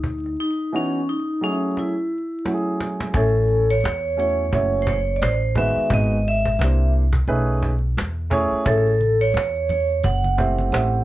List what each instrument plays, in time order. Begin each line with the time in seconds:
Already playing: upright bass D2, vibraphone D#4
0.04 cajon bass
0.24 cajon slap
0.26 cajon slap
0.40 vibraphone D#4
0.72 grand piano E3 B3 C#4 D#4 F#4, vibraphone C#4
1.09 vibraphone D#4
1.41 grand piano F#3 A3 C#4 D#4 G#4, vibraphone C#4
1.49 grand piano E4
1.77 vibraphone E4, cajon slap
2.45 grand piano F#3 A3 C#4 E4 F#4, cajon slap
2.53 grand piano G#4
2.80 cajon slap
3.00 cajon slap
3.14 upright bass A1, grand piano A3 C#4 E4 C#5 G#5, vibraphone A4, cajon bass
3.35 cajon slap
3.48 cajon slap
3.70 vibraphone C#5
3.84 upright bass E2, cajon slap
4.17 grand piano A3 C#4 E4 F#4 C#5, vibraphone C#5, cajon slap
4.38 cajon slap
4.51 upright bass F#1, grand piano A3 C#4 E4 F#4 C#5, cajon bass
4.82 vibraphone C5
4.87 vibraphone C#5, cajon bass
5.16 vibraphone D5
5.22 upright bass A1, vibraphone C5, cajon slap
5.55 grand piano D#3 G#3 B3 F#4 B4, vibraphone E5, cajon bass
5.76 muted upright bass stroke, cajon slap
5.78 cajon slap
5.90 upright bass G#1, grand piano G#3 B3 D#4 F#4 B4, vibraphone D#5, cajon bass
6.12 cajon slap
6.25 vibraphone E5, cajon slap
6.45 cajon bass
6.59 upright bass C2, grand piano A#3 D4 E4 G4 C5, cajon slap
6.94 cajon slap
7.13 cajon bass
7.27 upright bass B1, grand piano A3 C#4 D#4 G#4 B4, cajon slap
7.63 cajon bass
7.97 upright bass E2, cajon slap
8.30 grand piano A3 C#4 E4 G#4 C#5, cajon bass
8.52 muted upright bass stroke, cajon slap
8.54 cajon slap
8.65 upright bass A1, grand piano A3 C#4 E4 G#4 C#5, vibraphone A4, cajon bass, shaker
8.86 cajon slap, shaker
9.00 cajon slap, high conga, shaker
9.20 vibraphone C#5, cajon slap, shaker
9.34 upright bass E2, cajon slap, shaker
9.55 shaker
9.69 vibraphone C#5, cajon slap, low conga, shaker
9.89 cajon slap, shaker
10.04 upright bass F#1, vibraphone F#5, cajon bass, high conga, shaker
10.24 high conga, shaker
10.37 grand piano A3 C4 E4 G4 C5, cajon bass, shaker
10.58 high conga, shaker
10.72 upright bass A1, grand piano A3 C4 E4 G4 C5, cajon slap, shaker
10.93 shaker